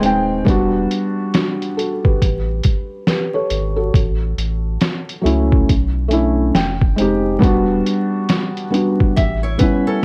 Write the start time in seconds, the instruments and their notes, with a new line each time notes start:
Already playing: nylon-string guitar C4 G#4
0.00 analog synth bass D#1, felt piano G#3 C4 D#4, closed hi-hat
0.05 felt piano G5
0.45 analog synth bass E1, felt piano G3 B3 D4, kick, closed hi-hat
0.50 felt piano F#4
0.91 closed hi-hat
1.34 felt piano D4 F#4, snare, closed hi-hat
1.62 closed hi-hat
1.77 felt piano F#4 A4, closed hi-hat
2.04 analog synth bass G1, felt piano G4 B4, kick
2.22 analog synth bass A1, kick, closed hi-hat
2.63 kick, closed hi-hat
3.07 felt piano G4 B4, snare, closed hi-hat
3.34 felt piano A4 C#5
3.50 analog synth bass G#1, closed hi-hat
3.76 felt piano F#4 A4
3.94 analog synth bass A1, kick, closed hi-hat
4.38 analog synth bass A1, closed hi-hat
4.81 snare, closed hi-hat
5.09 closed hi-hat
5.22 analog synth bass C#2, felt piano F#3 A3 C#4
5.26 felt piano E4, closed hi-hat
5.52 kick
5.69 analog synth bass B1, kick, closed hi-hat
6.08 felt piano A3 C#4 D4, closed hi-hat
6.13 felt piano E4
6.55 analog synth bass F1, felt piano G5, snare, closed hi-hat
6.81 kick
6.96 felt piano G#3 C4 D#4, closed hi-hat
7.01 felt piano G4
7.39 analog synth bass E1, felt piano G3 B3 D4, kick
7.43 felt piano F#4, closed hi-hat
7.86 closed hi-hat
8.29 snare, closed hi-hat
8.57 closed hi-hat
8.70 felt piano G3 B3 D4, closed hi-hat
8.75 felt piano F#4
9.00 analog synth bass G1, kick
9.16 analog synth bass A1, nylon-string guitar G4 E5, kick, closed hi-hat
9.43 nylon-string guitar E4 C#5
9.58 felt piano G3 B3 C#4, nylon-string guitar B4, kick, closed hi-hat
9.62 felt piano E4
9.87 nylon-string guitar C#4 A4